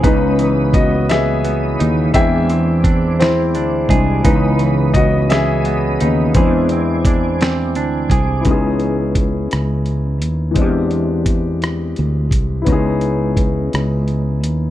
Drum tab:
HH |xxxxxx|xxxxxx|xxxxxx|xxxxxx|
SD |---o--|---o--|---o--|---o--|
BD |o-o---|o-o--o|o-o---|o-o--o|

HH |xxxxxx|xxxxxx|xxxxxx|
SD |---r--|---r--|---r--|
BD |o-o---|o-o--o|o-o---|